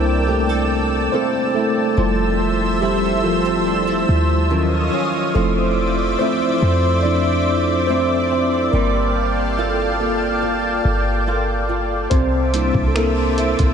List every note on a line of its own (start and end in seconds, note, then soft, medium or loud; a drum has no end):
0.00 1.09 C2 loud
0.00 1.97 C3 medium
0.00 1.93 G3 medium
0.00 1.11 A#3 medium
0.00 1.99 A#3 medium
0.00 1.14 C4 medium
0.00 1.93 D4 medium
0.00 1.13 E4 medium
0.00 1.94 E4 medium
0.00 0.27 A4 medium
0.00 0.19 A#4 loud
0.00 1.12 C5 loud
0.00 1.94 D5 medium
0.00 1.94 G5 medium
0.00 4.47 A5 medium
0.00 1.94 E6 medium
0.20 0.28 A#4 medium
0.28 1.09 A3 medium
0.28 0.49 G4 medium
0.28 1.15 A4 medium
0.49 1.12 A4 medium
1.12 2.05 A#3 medium
1.12 1.52 C4 medium
1.12 1.54 E4 medium
1.12 3.27 A4 medium
1.12 1.56 C5 medium
1.55 1.97 A3 medium
1.55 2.82 E4 medium
1.55 2.85 A4 medium
1.97 4.04 F1 loud
1.97 4.50 F3 medium
1.97 2.53 G3 medium
1.97 2.54 E4 medium
1.97 4.48 C5 medium
1.97 4.48 E5 medium
1.97 4.48 E6 medium
2.81 3.22 G3 medium
2.81 4.59 A3 medium
2.81 3.23 C4 medium
2.81 3.66 E4 medium
2.81 3.21 G4 medium
3.24 4.90 F3 medium
3.24 3.45 A#3 medium
3.24 4.51 F4 medium
3.45 4.59 C4 soft
3.66 3.87 D4 medium
3.87 4.59 E4 medium
4.09 4.90 D#2 loud
4.50 5.35 D#3 medium
4.50 5.31 F#3 medium
4.50 5.31 C#4 soft
4.50 5.32 F4 medium
4.50 5.34 C#5 medium
4.50 5.34 D#5 medium
4.50 5.34 F5 medium
4.50 5.34 D#6 medium
4.93 5.43 C#4 medium
5.34 6.16 F1 loud
5.34 8.76 F3 medium
5.34 6.58 F3 medium
5.34 6.16 A3 medium
5.34 6.20 C4 medium
5.34 6.59 E4 medium
5.34 6.15 A4 medium
5.34 8.70 C5 medium
5.34 12.07 D5 medium
5.34 8.70 E5 medium
5.34 8.70 D6 medium
6.19 7.88 A3 medium
6.19 6.61 C4 medium
6.19 7.01 C4 medium
6.19 7.03 E4 medium
6.19 7.00 C5 loud
6.62 8.69 F2 loud
6.62 7.88 C4 medium
7.03 7.42 F3 soft
7.03 7.43 C4 soft
7.03 7.85 D4 medium
7.03 7.89 E4 medium
7.03 7.43 E4 medium
7.03 7.90 D5 medium
7.87 8.72 A3 medium
7.87 8.29 C4 medium
7.87 8.70 C4 medium
7.87 8.82 E4 medium
7.87 8.68 C5 loud
8.31 8.81 C4 medium
8.72 10.80 G1 loud
8.72 12.23 G3 medium
8.72 9.99 A#3 medium
8.72 11.22 A#4 medium
8.72 12.08 F5 medium
8.72 12.08 G5 medium
8.72 12.08 A5 medium
9.58 11.26 A#3 medium
9.58 9.99 F4 medium
9.58 10.42 A4 medium
10.00 12.07 A#3 medium
10.00 11.26 F4 medium
10.00 12.08 F4 medium
10.00 12.07 A4 medium
10.42 11.27 A4 medium
10.85 12.07 G1 loud
11.27 12.95 A#3 medium
11.27 11.68 F4 medium
11.27 12.96 A4 medium
11.69 12.20 F4 medium
12.10 12.72 C2 loud
12.10 13.74 C3 medium
12.10 12.85 C4 medium
12.10 12.84 C5 loud
12.10 13.74 C5 medium
12.10 13.74 E5 medium
12.10 13.74 A5 medium
12.10 13.74 D6 medium
12.10 kick loud
12.10 closed hi-hat medium
12.53 13.74 G3 medium
12.53 12.96 A#3 soft
12.53 13.74 D4 soft
12.53 13.74 E4 medium
12.53 closed hi-hat medium
12.74 13.56 C2 medium
12.74 kick medium
12.88 12.95 A4 medium
12.95 13.74 A#3 medium
12.95 13.37 E4 medium
12.95 13.74 A4 medium
12.95 13.74 A#4 medium
12.95 finger snap medium
12.95 closed hi-hat medium
13.38 13.74 E4 medium
13.38 closed hi-hat medium
13.59 13.74 C2 loud
13.59 kick medium
13.59 closed hi-hat medium